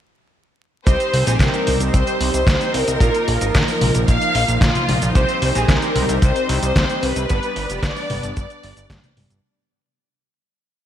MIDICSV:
0, 0, Header, 1, 6, 480
1, 0, Start_track
1, 0, Key_signature, -3, "minor"
1, 0, Tempo, 535714
1, 778, Time_signature, 4, 2, 24, 8
1, 9724, End_track
2, 0, Start_track
2, 0, Title_t, "Violin section"
2, 0, Program_c, 0, 48
2, 775, Note_on_c, 0, 72, 104
2, 1136, Note_off_c, 0, 72, 0
2, 1137, Note_on_c, 0, 68, 90
2, 1257, Note_off_c, 0, 68, 0
2, 1257, Note_on_c, 0, 70, 97
2, 1703, Note_off_c, 0, 70, 0
2, 1737, Note_on_c, 0, 72, 102
2, 2072, Note_off_c, 0, 72, 0
2, 2099, Note_on_c, 0, 72, 104
2, 2433, Note_off_c, 0, 72, 0
2, 2456, Note_on_c, 0, 70, 119
2, 3168, Note_off_c, 0, 70, 0
2, 3178, Note_on_c, 0, 70, 113
2, 3624, Note_off_c, 0, 70, 0
2, 3658, Note_on_c, 0, 77, 118
2, 4104, Note_off_c, 0, 77, 0
2, 4139, Note_on_c, 0, 65, 107
2, 4585, Note_off_c, 0, 65, 0
2, 4621, Note_on_c, 0, 72, 118
2, 4979, Note_off_c, 0, 72, 0
2, 4981, Note_on_c, 0, 68, 97
2, 5098, Note_on_c, 0, 70, 106
2, 5099, Note_off_c, 0, 68, 0
2, 5578, Note_off_c, 0, 70, 0
2, 5581, Note_on_c, 0, 72, 104
2, 5914, Note_off_c, 0, 72, 0
2, 5940, Note_on_c, 0, 72, 109
2, 6274, Note_off_c, 0, 72, 0
2, 6298, Note_on_c, 0, 71, 111
2, 7018, Note_off_c, 0, 71, 0
2, 7022, Note_on_c, 0, 74, 102
2, 7490, Note_off_c, 0, 74, 0
2, 7501, Note_on_c, 0, 74, 90
2, 8183, Note_off_c, 0, 74, 0
2, 9724, End_track
3, 0, Start_track
3, 0, Title_t, "Analog polysynth"
3, 0, Program_c, 1, 90
3, 778, Note_on_c, 1, 60, 83
3, 778, Note_on_c, 1, 63, 76
3, 778, Note_on_c, 1, 67, 74
3, 778, Note_on_c, 1, 72, 89
3, 1109, Note_off_c, 1, 60, 0
3, 1109, Note_off_c, 1, 63, 0
3, 1109, Note_off_c, 1, 67, 0
3, 1109, Note_off_c, 1, 72, 0
3, 1137, Note_on_c, 1, 63, 92
3, 1138, Note_on_c, 1, 60, 96
3, 1138, Note_on_c, 1, 67, 88
3, 1138, Note_on_c, 1, 72, 105
3, 2669, Note_off_c, 1, 60, 0
3, 2669, Note_off_c, 1, 63, 0
3, 2669, Note_off_c, 1, 67, 0
3, 2669, Note_off_c, 1, 72, 0
3, 2697, Note_on_c, 1, 58, 92
3, 2697, Note_on_c, 1, 63, 83
3, 2697, Note_on_c, 1, 65, 83
3, 2697, Note_on_c, 1, 70, 102
3, 3028, Note_off_c, 1, 58, 0
3, 3028, Note_off_c, 1, 63, 0
3, 3028, Note_off_c, 1, 65, 0
3, 3028, Note_off_c, 1, 70, 0
3, 3056, Note_on_c, 1, 63, 71
3, 3057, Note_on_c, 1, 58, 76
3, 3057, Note_on_c, 1, 65, 71
3, 3057, Note_on_c, 1, 70, 81
3, 3189, Note_off_c, 1, 58, 0
3, 3189, Note_off_c, 1, 63, 0
3, 3189, Note_off_c, 1, 65, 0
3, 3189, Note_off_c, 1, 70, 0
3, 4617, Note_on_c, 1, 60, 80
3, 4617, Note_on_c, 1, 63, 74
3, 4617, Note_on_c, 1, 67, 75
3, 4617, Note_on_c, 1, 72, 90
3, 4948, Note_off_c, 1, 60, 0
3, 4948, Note_off_c, 1, 63, 0
3, 4948, Note_off_c, 1, 67, 0
3, 4948, Note_off_c, 1, 72, 0
3, 4976, Note_on_c, 1, 60, 93
3, 4976, Note_on_c, 1, 63, 92
3, 4976, Note_on_c, 1, 67, 89
3, 4976, Note_on_c, 1, 72, 100
3, 6508, Note_off_c, 1, 60, 0
3, 6508, Note_off_c, 1, 63, 0
3, 6508, Note_off_c, 1, 67, 0
3, 6508, Note_off_c, 1, 72, 0
3, 6537, Note_on_c, 1, 59, 89
3, 6537, Note_on_c, 1, 62, 85
3, 6537, Note_on_c, 1, 67, 85
3, 6537, Note_on_c, 1, 71, 102
3, 6868, Note_off_c, 1, 59, 0
3, 6868, Note_off_c, 1, 62, 0
3, 6868, Note_off_c, 1, 71, 0
3, 6869, Note_off_c, 1, 67, 0
3, 6898, Note_on_c, 1, 59, 75
3, 6898, Note_on_c, 1, 62, 70
3, 6898, Note_on_c, 1, 67, 69
3, 6898, Note_on_c, 1, 71, 80
3, 7029, Note_off_c, 1, 59, 0
3, 7029, Note_off_c, 1, 62, 0
3, 7029, Note_off_c, 1, 67, 0
3, 7029, Note_off_c, 1, 71, 0
3, 9724, End_track
4, 0, Start_track
4, 0, Title_t, "Analog synth pad"
4, 0, Program_c, 2, 89
4, 776, Note_on_c, 2, 60, 72
4, 776, Note_on_c, 2, 63, 87
4, 777, Note_on_c, 2, 55, 82
4, 2677, Note_off_c, 2, 60, 0
4, 2678, Note_off_c, 2, 55, 0
4, 2694, Note_on_c, 2, 53, 81
4, 2695, Note_on_c, 2, 58, 74
4, 4597, Note_off_c, 2, 53, 0
4, 4597, Note_off_c, 2, 58, 0
4, 4618, Note_on_c, 2, 55, 83
4, 4619, Note_on_c, 2, 60, 74
4, 6501, Note_off_c, 2, 63, 0
4, 6519, Note_off_c, 2, 60, 0
4, 6538, Note_on_c, 2, 59, 73
4, 6538, Note_on_c, 2, 62, 89
4, 8422, Note_off_c, 2, 55, 0
4, 8439, Note_off_c, 2, 59, 0
4, 8439, Note_off_c, 2, 62, 0
4, 9724, End_track
5, 0, Start_track
5, 0, Title_t, "Analog synth bass"
5, 0, Program_c, 3, 38
5, 777, Note_on_c, 3, 36, 103
5, 865, Note_off_c, 3, 36, 0
5, 1018, Note_on_c, 3, 36, 93
5, 1105, Note_off_c, 3, 36, 0
5, 1138, Note_on_c, 3, 34, 86
5, 1225, Note_off_c, 3, 34, 0
5, 1249, Note_on_c, 3, 36, 100
5, 1341, Note_off_c, 3, 36, 0
5, 1497, Note_on_c, 3, 36, 93
5, 1585, Note_off_c, 3, 36, 0
5, 1617, Note_on_c, 3, 36, 84
5, 1705, Note_off_c, 3, 36, 0
5, 1737, Note_on_c, 3, 36, 102
5, 1825, Note_off_c, 3, 36, 0
5, 1976, Note_on_c, 3, 36, 99
5, 2065, Note_off_c, 3, 36, 0
5, 2097, Note_on_c, 3, 36, 80
5, 2185, Note_off_c, 3, 36, 0
5, 2211, Note_on_c, 3, 36, 105
5, 2302, Note_off_c, 3, 36, 0
5, 2457, Note_on_c, 3, 36, 93
5, 2545, Note_off_c, 3, 36, 0
5, 2579, Note_on_c, 3, 36, 85
5, 2666, Note_off_c, 3, 36, 0
5, 2692, Note_on_c, 3, 34, 102
5, 2783, Note_off_c, 3, 34, 0
5, 2938, Note_on_c, 3, 34, 95
5, 3026, Note_off_c, 3, 34, 0
5, 3058, Note_on_c, 3, 32, 84
5, 3146, Note_off_c, 3, 32, 0
5, 3178, Note_on_c, 3, 34, 96
5, 3265, Note_off_c, 3, 34, 0
5, 3418, Note_on_c, 3, 34, 89
5, 3506, Note_off_c, 3, 34, 0
5, 3537, Note_on_c, 3, 34, 82
5, 3625, Note_off_c, 3, 34, 0
5, 3658, Note_on_c, 3, 34, 101
5, 3745, Note_off_c, 3, 34, 0
5, 3897, Note_on_c, 3, 34, 100
5, 3985, Note_off_c, 3, 34, 0
5, 4016, Note_on_c, 3, 34, 78
5, 4105, Note_off_c, 3, 34, 0
5, 4130, Note_on_c, 3, 34, 102
5, 4222, Note_off_c, 3, 34, 0
5, 4377, Note_on_c, 3, 34, 95
5, 4465, Note_off_c, 3, 34, 0
5, 4498, Note_on_c, 3, 34, 88
5, 4586, Note_off_c, 3, 34, 0
5, 4617, Note_on_c, 3, 36, 107
5, 4705, Note_off_c, 3, 36, 0
5, 4857, Note_on_c, 3, 36, 99
5, 4945, Note_off_c, 3, 36, 0
5, 4977, Note_on_c, 3, 34, 85
5, 5065, Note_off_c, 3, 34, 0
5, 5093, Note_on_c, 3, 36, 104
5, 5183, Note_off_c, 3, 36, 0
5, 5338, Note_on_c, 3, 36, 97
5, 5425, Note_off_c, 3, 36, 0
5, 5458, Note_on_c, 3, 36, 88
5, 5546, Note_off_c, 3, 36, 0
5, 5575, Note_on_c, 3, 36, 109
5, 5664, Note_off_c, 3, 36, 0
5, 5816, Note_on_c, 3, 36, 101
5, 5905, Note_off_c, 3, 36, 0
5, 5936, Note_on_c, 3, 36, 83
5, 6025, Note_off_c, 3, 36, 0
5, 6055, Note_on_c, 3, 36, 105
5, 6144, Note_off_c, 3, 36, 0
5, 6296, Note_on_c, 3, 36, 94
5, 6385, Note_off_c, 3, 36, 0
5, 6417, Note_on_c, 3, 36, 84
5, 6505, Note_off_c, 3, 36, 0
5, 6543, Note_on_c, 3, 31, 106
5, 6628, Note_off_c, 3, 31, 0
5, 6777, Note_on_c, 3, 31, 94
5, 6865, Note_off_c, 3, 31, 0
5, 6897, Note_on_c, 3, 29, 86
5, 6985, Note_off_c, 3, 29, 0
5, 7013, Note_on_c, 3, 31, 97
5, 7103, Note_off_c, 3, 31, 0
5, 7257, Note_on_c, 3, 31, 90
5, 7345, Note_off_c, 3, 31, 0
5, 7377, Note_on_c, 3, 31, 82
5, 7465, Note_off_c, 3, 31, 0
5, 7498, Note_on_c, 3, 31, 110
5, 7586, Note_off_c, 3, 31, 0
5, 7738, Note_on_c, 3, 31, 103
5, 7825, Note_off_c, 3, 31, 0
5, 7858, Note_on_c, 3, 31, 80
5, 7945, Note_off_c, 3, 31, 0
5, 7973, Note_on_c, 3, 43, 108
5, 8063, Note_off_c, 3, 43, 0
5, 8217, Note_on_c, 3, 31, 96
5, 8305, Note_off_c, 3, 31, 0
5, 8337, Note_on_c, 3, 31, 89
5, 8425, Note_off_c, 3, 31, 0
5, 9724, End_track
6, 0, Start_track
6, 0, Title_t, "Drums"
6, 777, Note_on_c, 9, 36, 109
6, 777, Note_on_c, 9, 42, 87
6, 777, Note_on_c, 9, 69, 49
6, 866, Note_off_c, 9, 36, 0
6, 867, Note_off_c, 9, 42, 0
6, 867, Note_off_c, 9, 69, 0
6, 897, Note_on_c, 9, 42, 38
6, 897, Note_on_c, 9, 69, 30
6, 986, Note_off_c, 9, 42, 0
6, 986, Note_off_c, 9, 69, 0
6, 1017, Note_on_c, 9, 46, 109
6, 1107, Note_off_c, 9, 46, 0
6, 1137, Note_on_c, 9, 42, 53
6, 1137, Note_on_c, 9, 69, 63
6, 1227, Note_off_c, 9, 42, 0
6, 1227, Note_off_c, 9, 69, 0
6, 1249, Note_on_c, 9, 36, 126
6, 1257, Note_on_c, 9, 38, 116
6, 1257, Note_on_c, 9, 42, 86
6, 1257, Note_on_c, 9, 69, 47
6, 1338, Note_off_c, 9, 36, 0
6, 1347, Note_off_c, 9, 38, 0
6, 1347, Note_off_c, 9, 42, 0
6, 1347, Note_off_c, 9, 69, 0
6, 1377, Note_on_c, 9, 42, 39
6, 1377, Note_on_c, 9, 69, 31
6, 1467, Note_off_c, 9, 42, 0
6, 1467, Note_off_c, 9, 69, 0
6, 1496, Note_on_c, 9, 46, 112
6, 1496, Note_on_c, 9, 63, 75
6, 1586, Note_off_c, 9, 46, 0
6, 1586, Note_off_c, 9, 63, 0
6, 1617, Note_on_c, 9, 42, 54
6, 1617, Note_on_c, 9, 69, 58
6, 1707, Note_off_c, 9, 42, 0
6, 1707, Note_off_c, 9, 69, 0
6, 1737, Note_on_c, 9, 42, 86
6, 1737, Note_on_c, 9, 69, 51
6, 1738, Note_on_c, 9, 36, 119
6, 1827, Note_off_c, 9, 36, 0
6, 1827, Note_off_c, 9, 42, 0
6, 1827, Note_off_c, 9, 69, 0
6, 1857, Note_on_c, 9, 42, 38
6, 1857, Note_on_c, 9, 69, 32
6, 1947, Note_off_c, 9, 42, 0
6, 1947, Note_off_c, 9, 69, 0
6, 1977, Note_on_c, 9, 46, 115
6, 2066, Note_off_c, 9, 46, 0
6, 2098, Note_on_c, 9, 42, 56
6, 2098, Note_on_c, 9, 69, 59
6, 2187, Note_off_c, 9, 42, 0
6, 2187, Note_off_c, 9, 69, 0
6, 2210, Note_on_c, 9, 36, 123
6, 2218, Note_on_c, 9, 38, 127
6, 2218, Note_on_c, 9, 42, 85
6, 2218, Note_on_c, 9, 69, 52
6, 2300, Note_off_c, 9, 36, 0
6, 2307, Note_off_c, 9, 38, 0
6, 2307, Note_off_c, 9, 42, 0
6, 2307, Note_off_c, 9, 69, 0
6, 2337, Note_on_c, 9, 42, 37
6, 2337, Note_on_c, 9, 69, 30
6, 2427, Note_off_c, 9, 42, 0
6, 2427, Note_off_c, 9, 69, 0
6, 2457, Note_on_c, 9, 46, 106
6, 2546, Note_off_c, 9, 46, 0
6, 2577, Note_on_c, 9, 42, 56
6, 2577, Note_on_c, 9, 69, 62
6, 2667, Note_off_c, 9, 42, 0
6, 2667, Note_off_c, 9, 69, 0
6, 2691, Note_on_c, 9, 36, 127
6, 2697, Note_on_c, 9, 42, 84
6, 2697, Note_on_c, 9, 69, 47
6, 2781, Note_off_c, 9, 36, 0
6, 2787, Note_off_c, 9, 42, 0
6, 2787, Note_off_c, 9, 69, 0
6, 2817, Note_on_c, 9, 42, 39
6, 2817, Note_on_c, 9, 69, 26
6, 2907, Note_off_c, 9, 42, 0
6, 2907, Note_off_c, 9, 69, 0
6, 2937, Note_on_c, 9, 46, 100
6, 3026, Note_off_c, 9, 46, 0
6, 3057, Note_on_c, 9, 42, 55
6, 3057, Note_on_c, 9, 69, 56
6, 3147, Note_off_c, 9, 42, 0
6, 3147, Note_off_c, 9, 69, 0
6, 3178, Note_on_c, 9, 36, 114
6, 3178, Note_on_c, 9, 38, 123
6, 3178, Note_on_c, 9, 42, 83
6, 3178, Note_on_c, 9, 69, 47
6, 3267, Note_off_c, 9, 36, 0
6, 3268, Note_off_c, 9, 38, 0
6, 3268, Note_off_c, 9, 42, 0
6, 3268, Note_off_c, 9, 69, 0
6, 3297, Note_on_c, 9, 46, 62
6, 3297, Note_on_c, 9, 69, 28
6, 3387, Note_off_c, 9, 46, 0
6, 3387, Note_off_c, 9, 69, 0
6, 3417, Note_on_c, 9, 46, 110
6, 3417, Note_on_c, 9, 63, 76
6, 3507, Note_off_c, 9, 46, 0
6, 3507, Note_off_c, 9, 63, 0
6, 3537, Note_on_c, 9, 42, 52
6, 3537, Note_on_c, 9, 69, 55
6, 3626, Note_off_c, 9, 42, 0
6, 3626, Note_off_c, 9, 69, 0
6, 3657, Note_on_c, 9, 36, 127
6, 3657, Note_on_c, 9, 42, 83
6, 3657, Note_on_c, 9, 69, 49
6, 3747, Note_off_c, 9, 36, 0
6, 3747, Note_off_c, 9, 42, 0
6, 3747, Note_off_c, 9, 69, 0
6, 3777, Note_on_c, 9, 42, 41
6, 3777, Note_on_c, 9, 69, 30
6, 3867, Note_off_c, 9, 42, 0
6, 3867, Note_off_c, 9, 69, 0
6, 3897, Note_on_c, 9, 46, 114
6, 3987, Note_off_c, 9, 46, 0
6, 4017, Note_on_c, 9, 42, 58
6, 4017, Note_on_c, 9, 69, 59
6, 4107, Note_off_c, 9, 42, 0
6, 4107, Note_off_c, 9, 69, 0
6, 4131, Note_on_c, 9, 36, 117
6, 4137, Note_on_c, 9, 38, 127
6, 4137, Note_on_c, 9, 42, 86
6, 4137, Note_on_c, 9, 69, 49
6, 4220, Note_off_c, 9, 36, 0
6, 4227, Note_off_c, 9, 38, 0
6, 4227, Note_off_c, 9, 42, 0
6, 4227, Note_off_c, 9, 69, 0
6, 4258, Note_on_c, 9, 42, 39
6, 4258, Note_on_c, 9, 63, 57
6, 4258, Note_on_c, 9, 69, 28
6, 4348, Note_off_c, 9, 42, 0
6, 4348, Note_off_c, 9, 63, 0
6, 4348, Note_off_c, 9, 69, 0
6, 4377, Note_on_c, 9, 46, 108
6, 4377, Note_on_c, 9, 63, 75
6, 4467, Note_off_c, 9, 46, 0
6, 4467, Note_off_c, 9, 63, 0
6, 4497, Note_on_c, 9, 42, 55
6, 4497, Note_on_c, 9, 69, 58
6, 4587, Note_off_c, 9, 42, 0
6, 4587, Note_off_c, 9, 69, 0
6, 4617, Note_on_c, 9, 36, 126
6, 4617, Note_on_c, 9, 42, 78
6, 4617, Note_on_c, 9, 69, 50
6, 4707, Note_off_c, 9, 36, 0
6, 4707, Note_off_c, 9, 42, 0
6, 4707, Note_off_c, 9, 69, 0
6, 4737, Note_on_c, 9, 42, 37
6, 4737, Note_on_c, 9, 69, 28
6, 4827, Note_off_c, 9, 42, 0
6, 4827, Note_off_c, 9, 69, 0
6, 4857, Note_on_c, 9, 46, 102
6, 4947, Note_off_c, 9, 46, 0
6, 4976, Note_on_c, 9, 42, 55
6, 4976, Note_on_c, 9, 69, 58
6, 5066, Note_off_c, 9, 42, 0
6, 5066, Note_off_c, 9, 69, 0
6, 5093, Note_on_c, 9, 36, 123
6, 5097, Note_on_c, 9, 38, 127
6, 5097, Note_on_c, 9, 42, 81
6, 5097, Note_on_c, 9, 69, 45
6, 5183, Note_off_c, 9, 36, 0
6, 5186, Note_off_c, 9, 38, 0
6, 5186, Note_off_c, 9, 42, 0
6, 5186, Note_off_c, 9, 69, 0
6, 5217, Note_on_c, 9, 42, 36
6, 5217, Note_on_c, 9, 69, 28
6, 5307, Note_off_c, 9, 42, 0
6, 5307, Note_off_c, 9, 69, 0
6, 5336, Note_on_c, 9, 46, 104
6, 5336, Note_on_c, 9, 63, 76
6, 5426, Note_off_c, 9, 46, 0
6, 5426, Note_off_c, 9, 63, 0
6, 5457, Note_on_c, 9, 42, 55
6, 5457, Note_on_c, 9, 69, 54
6, 5546, Note_off_c, 9, 42, 0
6, 5546, Note_off_c, 9, 69, 0
6, 5575, Note_on_c, 9, 36, 127
6, 5576, Note_on_c, 9, 42, 83
6, 5576, Note_on_c, 9, 69, 49
6, 5665, Note_off_c, 9, 36, 0
6, 5666, Note_off_c, 9, 42, 0
6, 5666, Note_off_c, 9, 69, 0
6, 5697, Note_on_c, 9, 42, 39
6, 5697, Note_on_c, 9, 69, 29
6, 5787, Note_off_c, 9, 42, 0
6, 5787, Note_off_c, 9, 69, 0
6, 5817, Note_on_c, 9, 46, 105
6, 5906, Note_off_c, 9, 46, 0
6, 5937, Note_on_c, 9, 42, 53
6, 5937, Note_on_c, 9, 69, 57
6, 6027, Note_off_c, 9, 42, 0
6, 6027, Note_off_c, 9, 69, 0
6, 6055, Note_on_c, 9, 36, 121
6, 6058, Note_on_c, 9, 38, 127
6, 6058, Note_on_c, 9, 42, 84
6, 6058, Note_on_c, 9, 69, 48
6, 6144, Note_off_c, 9, 36, 0
6, 6147, Note_off_c, 9, 38, 0
6, 6147, Note_off_c, 9, 42, 0
6, 6147, Note_off_c, 9, 69, 0
6, 6177, Note_on_c, 9, 42, 36
6, 6177, Note_on_c, 9, 69, 27
6, 6267, Note_off_c, 9, 42, 0
6, 6267, Note_off_c, 9, 69, 0
6, 6297, Note_on_c, 9, 46, 106
6, 6387, Note_off_c, 9, 46, 0
6, 6417, Note_on_c, 9, 42, 58
6, 6417, Note_on_c, 9, 69, 57
6, 6507, Note_off_c, 9, 42, 0
6, 6507, Note_off_c, 9, 69, 0
6, 6537, Note_on_c, 9, 42, 78
6, 6537, Note_on_c, 9, 69, 48
6, 6543, Note_on_c, 9, 36, 118
6, 6627, Note_off_c, 9, 42, 0
6, 6627, Note_off_c, 9, 69, 0
6, 6632, Note_off_c, 9, 36, 0
6, 6657, Note_on_c, 9, 42, 35
6, 6657, Note_on_c, 9, 69, 29
6, 6746, Note_off_c, 9, 42, 0
6, 6746, Note_off_c, 9, 69, 0
6, 6776, Note_on_c, 9, 46, 93
6, 6865, Note_off_c, 9, 46, 0
6, 6897, Note_on_c, 9, 42, 55
6, 6897, Note_on_c, 9, 69, 59
6, 6986, Note_off_c, 9, 42, 0
6, 6986, Note_off_c, 9, 69, 0
6, 7013, Note_on_c, 9, 36, 127
6, 7017, Note_on_c, 9, 38, 127
6, 7017, Note_on_c, 9, 42, 79
6, 7017, Note_on_c, 9, 69, 48
6, 7102, Note_off_c, 9, 36, 0
6, 7106, Note_off_c, 9, 38, 0
6, 7106, Note_off_c, 9, 42, 0
6, 7106, Note_off_c, 9, 69, 0
6, 7136, Note_on_c, 9, 46, 58
6, 7136, Note_on_c, 9, 69, 30
6, 7226, Note_off_c, 9, 46, 0
6, 7226, Note_off_c, 9, 69, 0
6, 7257, Note_on_c, 9, 46, 102
6, 7257, Note_on_c, 9, 63, 77
6, 7346, Note_off_c, 9, 46, 0
6, 7346, Note_off_c, 9, 63, 0
6, 7377, Note_on_c, 9, 42, 54
6, 7377, Note_on_c, 9, 69, 54
6, 7467, Note_off_c, 9, 42, 0
6, 7467, Note_off_c, 9, 69, 0
6, 7497, Note_on_c, 9, 42, 82
6, 7497, Note_on_c, 9, 69, 53
6, 7498, Note_on_c, 9, 36, 127
6, 7587, Note_off_c, 9, 42, 0
6, 7587, Note_off_c, 9, 69, 0
6, 7588, Note_off_c, 9, 36, 0
6, 7617, Note_on_c, 9, 42, 38
6, 7617, Note_on_c, 9, 69, 30
6, 7707, Note_off_c, 9, 42, 0
6, 7707, Note_off_c, 9, 69, 0
6, 7736, Note_on_c, 9, 46, 103
6, 7826, Note_off_c, 9, 46, 0
6, 7857, Note_on_c, 9, 42, 53
6, 7857, Note_on_c, 9, 69, 58
6, 7947, Note_off_c, 9, 42, 0
6, 7947, Note_off_c, 9, 69, 0
6, 7973, Note_on_c, 9, 36, 127
6, 7977, Note_on_c, 9, 38, 127
6, 7977, Note_on_c, 9, 42, 85
6, 7977, Note_on_c, 9, 69, 53
6, 8063, Note_off_c, 9, 36, 0
6, 8067, Note_off_c, 9, 38, 0
6, 8067, Note_off_c, 9, 42, 0
6, 8067, Note_off_c, 9, 69, 0
6, 8097, Note_on_c, 9, 42, 37
6, 8097, Note_on_c, 9, 63, 64
6, 8097, Note_on_c, 9, 69, 29
6, 8186, Note_off_c, 9, 42, 0
6, 8186, Note_off_c, 9, 63, 0
6, 8186, Note_off_c, 9, 69, 0
6, 8217, Note_on_c, 9, 46, 99
6, 8217, Note_on_c, 9, 63, 83
6, 8306, Note_off_c, 9, 46, 0
6, 8306, Note_off_c, 9, 63, 0
6, 8336, Note_on_c, 9, 42, 53
6, 8336, Note_on_c, 9, 69, 58
6, 8426, Note_off_c, 9, 42, 0
6, 8426, Note_off_c, 9, 69, 0
6, 9724, End_track
0, 0, End_of_file